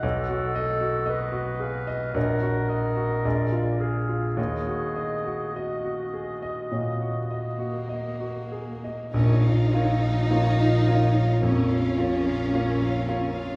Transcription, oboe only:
\new Staff \with { instrumentName = "Oboe" } { \time 4/4 \key ees \minor \tempo 4 = 54 ges''8. r16 dis''8 f''8 ges''8 ees''8 d''8 f''8 | ees''2.~ ees''8 r8 | \key bes \minor r1 | }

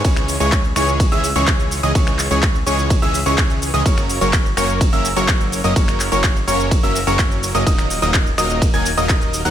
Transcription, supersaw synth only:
\new Staff \with { instrumentName = "Supersaw synth" } { \time 4/4 \key cis \dorian \tempo 4 = 126 <e gis cis' cis''>8. <e gis cis' gis' cis''>8 r16 <e gis cis' gis' cis''>8. <e gis cis' gis' e''>16 r16 <e gis cis' gis' cis''>4 <e gis cis' gis' dis''>16 | <e gis cis' gis' cis''>8. <e gis cis' gis' cis''>8 r16 <e gis cis' gis' cis''>8. <e gis cis' gis' e''>16 r16 <e gis cis' gis' cis''>4 <e gis cis' gis' dis''>16 | <fis ais cis' ais' cis''>8. <fis ais cis' ais' cis''>8 r16 <fis ais cis' ais' cis''>8. <fis ais cis' ais' e''>16 r16 <fis ais cis' ais' cis''>4 <fis ais cis' ais' dis''>16 | <ais ais' cis''>8. <fis ais cis' ais' cis''>8 r16 <fis ais cis' ais' cis''>8. <fis ais cis' ais' e''>16 r16 <fis ais cis' ais' cis''>4 <fis ais cis' ais' dis''>16 |
<ais ais' dis''>8. <fis ais dis' ais' dis''>8 r16 <fis ais dis' ais' dis''>8. <fis ais dis' ais' gis''>16 r16 <fis ais dis' ais' dis''>4 <fis ais dis' ais' fis''>16 | }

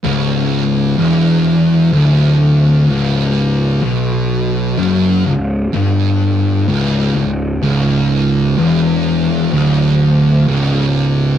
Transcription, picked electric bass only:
\new Staff \with { instrumentName = "Picked electric bass" } { \clef bass \time 4/4 \key cis \phrygian \tempo 4 = 63 cis,,4 e,,4 d,,4 cis,,4 | b,,4 fis,,8 cis,,8 g,,4 cis,,8 cis,,8 | cis,,4 e,,4 d,,4 cis,,4 | }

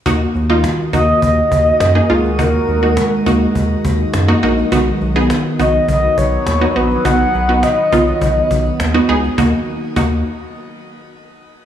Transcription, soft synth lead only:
\new Staff \with { instrumentName = "Soft synth lead" } { \time 4/4 \key ees \minor \tempo 4 = 103 r4. ees''8 ees''4. aes'8 | bes'4. r2 r8 | r4. dis''8 dis''8 des''4 b'8 | fis''4 dis''2 r4 |
r1 | }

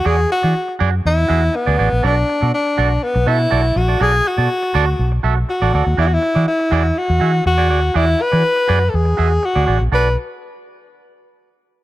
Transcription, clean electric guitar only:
\new Staff \with { instrumentName = "Clean electric guitar" } { \time 4/4 \key b \dorian \tempo 4 = 122 <fis' gis' d''>16 r8 <fis' gis' d''>16 r8 <fis' gis' d''>16 r8. <fis' gis' e''>16 r8 <fis' gis' d''>16 <fis' gis' d''>16 r16 | <fis' a' d''>16 r8 <fis' a' d''>16 r8 <fis' a' d''>16 r8. <fis' a' e''>16 r16 <fis' a' d''>16 r8 <fis' a' d''>16 | <fis' a' d''>16 r8 <fis' a' d''>16 r8 <fis' a' d''>16 r8. <fis' a' e''>16 r8 <fis' a' d''>16 <fis' a' d''>16 r16 | <fis' gis' d''>16 r8 <fis' gis' d''>16 r8 <fis' gis' d''>16 r8. <fis' gis' e''>16 r8 <fis' gis' d''>16 <fis' gis' d''>16 r16 |
<fis' gis' d''>16 r8 <fis' gis' d''>16 r8 <fis' gis' d''>16 r8. <fis' gis' e''>16 r8 <fis' gis' d''>16 <fis' gis' d''>16 r16 | <fis' a' d''>16 r2. r8. | }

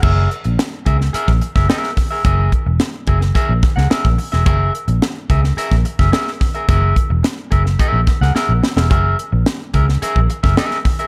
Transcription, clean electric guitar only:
\new Staff \with { instrumentName = "Clean electric guitar" } { \time 4/4 \key fis \mixolydian \tempo 4 = 108 <gis' ais' e''>8 r4 <gis' ais' e''>16 r16 <gis' ais' e''>16 r8 <gis' ais' e''>16 <gis' ais' e''>16 r8 <gis' ais' e''>16 | <gis' ais' e''>8 r4 <gis' ais' e''>16 r16 <gis' ais' e''>16 r8 <gis' ais' fis''>16 <gis' ais' e''>16 r8 <gis' ais' e''>16 | <gis' ais' e''>8 r4 <gis' ais' e''>16 r16 <gis' ais' e''>16 r8 <gis' ais' e''>16 <gis' ais' e''>16 r8 <gis' ais' e''>16 | <gis' ais' e''>8 r4 <gis' ais' e''>16 r16 <gis' ais' e''>16 r8 <gis' ais' fis''>16 <gis' ais' e''>16 r8 <gis' ais' e''>16 |
<gis' ais' e''>8 r4 <gis' ais' e''>16 r16 <gis' ais' e''>16 r8 <gis' ais' e''>16 <gis' ais' e''>16 r8 <gis' ais' e''>16 | }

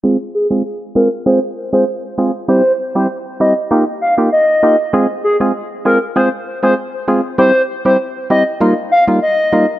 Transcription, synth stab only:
\new Staff \with { instrumentName = "Synth stab" } { \time 4/4 \key f \minor \tempo 4 = 98 <aes c' f' aes'>16 r8 <aes c' f' aes'>16 r8 <aes c' f' aes'>16 r16 <aes c' f' aes'>16 r8 <aes c' f' aes'>16 r8 <aes c' f' aes'>16 r16 | <g c' e' g'>16 r8 <g c' e' g'>16 r8 <g c' e' g'>16 r16 <bes ees' f' g'>16 r8 <bes ees' f' g'>16 r8 <bes ees' f' g'>16 r16 | <aes c' f' aes'>16 r8 <aes c' f' aes'>16 r8 <aes c' f' aes'>16 r16 <aes c' f' aes'>16 r8 <aes c' f' aes'>16 r8 <aes c' f' aes'>16 r16 | <g c' e' g'>16 r8 <g c' e' g'>16 r8 <g c' e' g'>16 r16 <g bes ees' f'>16 r8 <g bes ees' f'>16 r8 <g bes ees' f'>16 r16 | }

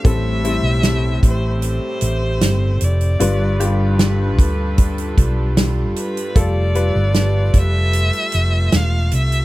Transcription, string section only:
\new Staff \with { instrumentName = "String section" } { \time 4/4 \key a \minor \tempo 4 = 76 << { <a c' g'>1 | <d' a' b'>1 | a1 | } \\ { r1 | <g f'>1~ | <g f'>1 | } >> }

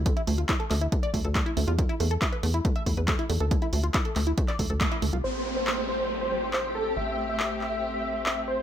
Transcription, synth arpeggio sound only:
\new Staff \with { instrumentName = "Synth arpeggio sound" } { \time 4/4 \key a \minor \tempo 4 = 139 a16 e'16 a16 f'16 e'16 a'16 a16 e'16 a16 d''16 a16 a'16 a16 e'16 a16 f'16 | a16 e'16 a16 a'16 e'16 b'16 a16 e'16 a16 e''16 a16 b'16 a16 e'16 a16 a'16 | a16 e'16 a16 f'16 e'16 a'16 a16 e'16 a16 d''16 a16 a'16 a16 e'16 a16 f'16 | r1 |
r1 | }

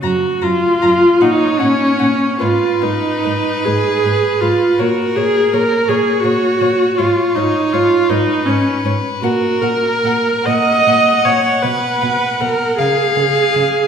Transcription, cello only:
\new Staff \with { instrumentName = "Cello" } { \clef bass \time 6/8 \key fis \major \tempo 4. = 52 fis,8 fis,8 fis,8 ais,8 ais,8 ais,8 | gis,8 gis,8 gis,8 gis,8 gis,8 gis,8 | ais,8 ais,8 ais,8 ais,8 ais,8 ais,8 | gis,8 gis,8 gis,8 gis,8 gis,8 gis,8 |
ais,8 ais,8 ais,8 ais,8 ais,8 ais,8 | b,8 b,8 b,8 cis8 cis8 cis8 | }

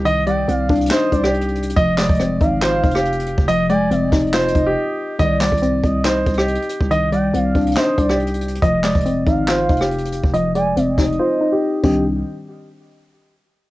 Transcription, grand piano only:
\new Staff \with { instrumentName = "Grand piano" } { \time 4/4 \key c \minor \tempo 4 = 140 ees''8 d''4. c''8. g'4~ g'16 | ees''8 d''4. c''8. g'4~ g'16 | ees''8 d''4. c''8. g'4~ g'16 | ees''8 d''4. c''8. g'4~ g'16 |
ees''8 d''4. c''8. g'4~ g'16 | ees''8 d''4. c''8. g'4~ g'16 | ees''8 d''4. c''8. g'8. g'8 | r1 | }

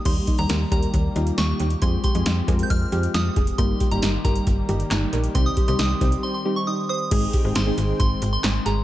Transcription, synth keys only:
\new Staff \with { instrumentName = "Synth keys" } { \time 4/4 \key ees \mixolydian \tempo 4 = 136 <g bes ees' g'>8 r16 <g bes ees' g'>8 r16 <g bes ees' bes'>8. r16 <g bes ees' f'>4 r8 | <aes c' f' aes'>8 r16 <aes c' f' aes'>8 r16 <aes c' f' bes'>8. r16 <aes c' f' g'>4 r8 | <g bes ees' g'>8 r16 <g bes ees' g'>8 r16 <g bes ees' g'>8. r16 <g bes ees' g'>4 r8 | <g c' ees' g'>8 r16 <g c' ees' g'>8 r16 <g c' ees' g'>8. r16 <g c' ees' g'>4 r8 |
<aes c' ees' aes'>8 r16 <aes c' ees' aes'>16 r16 <aes c' ees' aes'>4. r4 r16 | }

